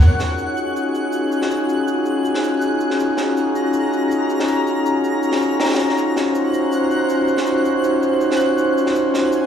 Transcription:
0.01 C#4 D#4 F4 F#4 G#4 F#6, shaker
0.19 snare, shaker
0.38 shaker
0.57 shaker
0.76 shaker
0.95 shaker
1.12 shaker
1.32 shaker
1.42 snare
1.51 shaker
1.69 shaker
1.88 shaker
2.05 shaker
2.25 shaker
2.34 snare
2.44 shaker
2.61 shaker
2.80 shaker
2.90 snare
3.00 A#5, shaker
3.17 snare, shaker
3.37 shaker
3.55 shaker
3.73 shaker
3.93 shaker
4.11 shaker
4.30 shaker
4.40 snare
4.48 shaker
4.67 shaker
4.86 shaker
5.04 shaker
5.23 shaker
5.32 snare
5.42 shaker
5.60 snare, shaker
5.65 snare, shaker
5.69 snare, shaker
5.74 snare, shaker
5.79 shaker
5.89 snare
5.98 C5 F#6, shaker
6.16 snare, shaker
6.35 shaker
6.54 shaker
6.72 shaker
6.91 shaker
7.09 shaker
7.28 shaker
7.37 snare
7.46 shaker
7.65 shaker
7.84 shaker
8.03 shaker
8.21 shaker
8.31 snare
8.40 shaker
8.58 shaker
8.78 shaker
8.86 snare
8.95 G#5, shaker
9.14 snare, shaker
9.32 shaker

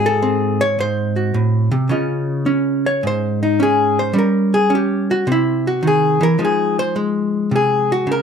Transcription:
Already playing: G#2 C4 F#4 G#4
0.06 A4
0.22 C4
0.61 C#5
0.79 G#2 C5
1.16 F#4
1.34 A2
1.71 C3
1.89 C#3 C#4 F4 D#5
2.46 C#4
2.86 C#5
3.03 G#2 C5
3.43 D#4
3.60 C#4 G#4
3.99 C5
4.13 G3 C#4
4.18 A#4
4.54 G#4
4.70 C#4
4.75 G4
5.11 F#4
5.27 C3 C4
5.32 E4
5.67 F#4
5.83 D#3
5.87 G#4
6.21 E3 A#4
6.39 F3 G#3 D#4
6.45 G#4
6.79 C5
6.96 G#3
7.51 C3
7.56 G#4
7.92 F#4
8.07 C#3
8.12 A#4

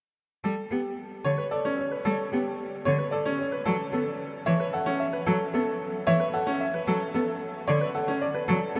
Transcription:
0.44 G3 A4
0.71 B3 G4
1.25 D3 C#5
1.38 B4
1.51 A4 D5
1.65 C#4
1.78 C#5
1.92 B4
2.05 G3 A4
2.32 B3 G4
2.85 D3 C#5
2.98 B4
3.11 A4 D5
3.26 C#4
3.39 C#5
3.52 B4
3.65 F#3 A4
3.92 B3 A4
4.46 E3 C#5 E5
4.60 B4
4.73 A4 F#5
4.86 C#4
5.00 E5
5.13 B4
5.26 F#3 A4
5.54 B3 A4
6.07 E3 C#5 E5
6.20 B4
6.33 A4 F#5
6.47 C#4
6.60 E5
6.74 B4
6.87 F#3 A4
7.14 B3 A4
7.68 D3 C#5 D5
7.81 B4
7.95 A4 F#5
8.08 C#4
8.22 D5
8.34 B4
8.48 F#3 A4
8.75 B3 A4

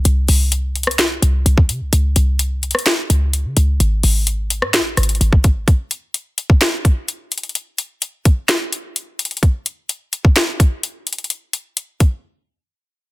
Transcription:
0.05 C2, closed hi-hat
0.28 C2, open hi-hat
0.52 closed hi-hat
0.75 closed hi-hat
0.83 cross-stick, closed hi-hat
0.91 closed hi-hat
0.99 snare, closed hi-hat
1.22 C2, closed hi-hat
1.46 C2, closed hi-hat
1.58 kick
1.69 C3, closed hi-hat
1.81 C2
1.93 C#2, closed hi-hat
2.16 C2, closed hi-hat
2.39 closed hi-hat
2.63 closed hi-hat
2.71 cross-stick, closed hi-hat
2.79 closed hi-hat
2.86 snare, closed hi-hat
3.10 C#2, closed hi-hat
3.33 closed hi-hat
3.45 C#3
3.57 C#2, closed hi-hat
3.80 G#1, closed hi-hat
4.03 G#1, open hi-hat
4.27 closed hi-hat
4.50 closed hi-hat
4.62 G#2, cross-stick
4.74 snare, closed hi-hat
4.80 G#1
4.97 G#1, cross-stick, closed hi-hat
5.03 closed hi-hat
5.09 closed hi-hat
5.15 closed hi-hat
5.21 G#1, closed hi-hat
5.33 kick
5.44 kick, closed hi-hat
5.68 kick, closed hi-hat
5.91 closed hi-hat
6.14 closed hi-hat
6.38 closed hi-hat
6.50 kick
6.61 snare, closed hi-hat
6.85 kick, closed hi-hat
7.08 closed hi-hat
7.32 closed hi-hat
7.38 closed hi-hat
7.43 closed hi-hat
7.49 closed hi-hat
7.55 closed hi-hat
7.78 closed hi-hat
8.02 closed hi-hat
8.25 kick, closed hi-hat
8.49 snare, closed hi-hat
8.73 closed hi-hat
8.96 closed hi-hat
9.19 closed hi-hat
9.25 closed hi-hat
9.31 closed hi-hat
9.37 closed hi-hat
9.43 kick, closed hi-hat
9.66 closed hi-hat
9.89 closed hi-hat
10.13 closed hi-hat
10.25 kick
10.36 snare, closed hi-hat
10.60 kick, closed hi-hat
10.83 closed hi-hat
11.07 closed hi-hat
11.13 closed hi-hat
11.18 closed hi-hat
11.24 closed hi-hat
11.30 closed hi-hat
11.53 closed hi-hat
11.77 closed hi-hat
12.00 kick, closed hi-hat

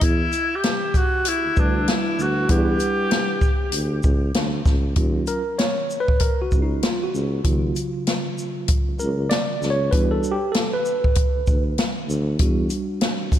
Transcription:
0.01 E2 E4, kick, closed hi-hat
0.33 closed hi-hat, shaker
0.56 G4
0.63 snare, closed hi-hat
0.94 F#4, kick, closed hi-hat, shaker
1.25 E4, closed hi-hat
1.45 D2
1.57 D2 G3 D4 E4 F#4 B4, kick, shaker
1.88 E4, snare, closed hi-hat
2.18 D2 F#4, shaker
2.48 E2 G3 D4 E4 G4 B4 F#5, kick, closed hi-hat
2.80 closed hi-hat, shaker
3.11 snare, closed hi-hat
3.41 kick, shaker
3.72 D2, closed hi-hat
4.03 C#2, kick, shaker
4.34 D2, snare, closed hi-hat
4.65 C#2, kick, snare, shaker
4.96 D#2 F#3 C#4 F4, kick, closed hi-hat
5.27 A#4, closed hi-hat, shaker
5.59 C#5, snare, closed hi-hat
5.90 shaker
6.00 B4
6.08 kick
6.20 A#4, kick, closed hi-hat
6.40 C#2 F#4
6.52 C#2, kick, shaker
6.62 D#4
6.83 F4, snare, closed hi-hat
7.03 F#4
7.14 C#2, shaker
7.44 D#2 C#3 F#3 F4, kick, closed hi-hat
7.76 closed hi-hat, shaker
8.07 snare, closed hi-hat
8.38 shaker
8.68 kick, closed hi-hat
8.89 C#2
9.00 C#2 A#4, shaker
9.30 D5, snare, closed hi-hat
9.61 C#2, snare, shaker
9.70 C#5
9.91 E2 G3 D4 F#4 B4, kick, closed hi-hat
10.11 A4
10.24 shaker
10.32 G4
10.52 A4, snare, closed hi-hat
10.74 B4
10.85 shaker
11.04 kick
11.15 kick, closed hi-hat
11.36 D2
11.47 D2, kick, shaker
11.78 snare, closed hi-hat
12.08 D2, shaker
12.39 E2 G3 D4 F#4, kick, closed hi-hat
12.70 closed hi-hat, shaker
13.01 snare, closed hi-hat
13.32 kick, closed hi-hat, shaker

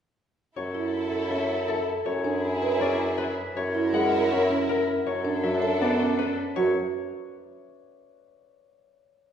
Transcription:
0.56 F#2 E4 A4 C#5
0.75 E4
1.12 A4
1.30 C#4 E5
1.68 A4
2.06 F#2 E4 G#4 C#5
2.24 D4
2.62 B4
2.81 C#4 D5
3.18 B4
3.56 F#2 E4 A#4 C#5
3.75 E4
3.93 G#3 F#5
4.12 A#4
4.31 C#4 E5
4.50 C#4
4.69 A#4
5.06 F#2 D4 A4 C#5
5.25 D4
5.43 F#3 E5
5.62 A4
5.81 B3 D5
6.00 C#4
6.18 B4
6.56 F#2 F#3 F#4 C#5

